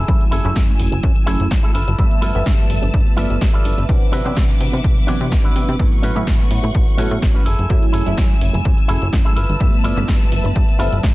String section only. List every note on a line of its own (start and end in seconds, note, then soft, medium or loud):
0.00 1.73 G#5 medium
0.00 3.85 E6 medium
1.75 7.42 B4 medium
1.75 3.87 A5 medium
3.89 5.78 E5 medium
3.89 5.78 F#5 medium
3.89 5.78 D6 medium
5.80 7.45 F#5 medium
5.80 7.45 C#6 medium
7.46 9.35 G#5 medium
7.46 11.14 E6 medium
9.37 11.14 B4 medium
9.37 11.14 A5 medium